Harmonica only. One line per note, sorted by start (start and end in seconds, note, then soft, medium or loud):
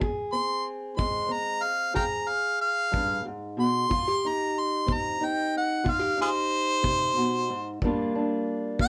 0.33 0.65 C6 medium
0.97 1.34 C6 medium
1.32 1.64 A#5 medium
1.63 1.95 F5 medium
1.95 2.04 F5 medium
1.95 2.04 G5 medium
1.95 2.30 A#5 loud
2.29 2.60 F5 medium
2.61 3.25 F5 loud
3.60 4.29 C6 loud
4.28 4.61 A#5 medium
4.60 4.95 C6 medium
4.93 5.26 A#5 medium
5.25 5.55 G5 medium
5.57 5.91 F#5 loud
5.90 6.20 F5 loud
6.22 6.30 F4 medium
6.22 6.30 G#4 medium
6.22 7.79 C5 loud
8.82 8.88 G5 loud